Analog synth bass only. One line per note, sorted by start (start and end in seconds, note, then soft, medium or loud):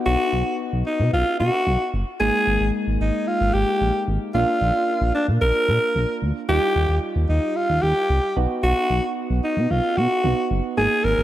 0.06 0.16 B1 loud
0.33 0.43 B1 loud
0.73 0.83 B1 loud
1.00 1.10 B2 loud
1.13 1.23 B1 loud
1.40 1.50 B2 loud
1.67 1.77 B1 loud
1.94 2.04 F#1 medium
2.20 2.31 G#1 loud
2.47 2.57 G#1 loud
2.61 2.71 G#1 medium
2.87 2.98 G#1 medium
3.01 3.11 G#1 loud
3.41 3.51 G#1 loud
3.54 3.64 G#1 loud
3.81 3.91 A#1 medium
4.08 4.18 G#1 medium
4.34 4.45 A#1 loud
4.61 4.72 A#1 loud
5.01 5.12 A#1 loud
5.28 5.39 A#2 medium
5.41 5.52 A#1 loud
5.68 5.79 A#2 medium
5.95 6.06 A#1 loud
6.22 6.32 D2 medium
6.49 6.59 D#2 loud
6.76 6.86 D#2 loud
6.89 6.99 D#2 medium
7.16 7.26 D#2 medium
7.29 7.40 D#2 loud
7.70 7.80 D#2 medium
7.83 7.93 D#2 loud
8.10 8.20 C2 medium
8.37 8.47 B1 loud
8.63 8.74 B1 loud
8.90 9.00 B1 loud
9.30 9.40 B1 loud
9.57 9.67 B2 loud
9.70 9.81 B1 loud
9.97 10.07 B2 loud
10.24 10.34 B1 loud
10.51 10.61 F#1 medium
10.77 10.88 G#1 loud
11.04 11.15 G#1 loud
11.18 11.23 G#1 medium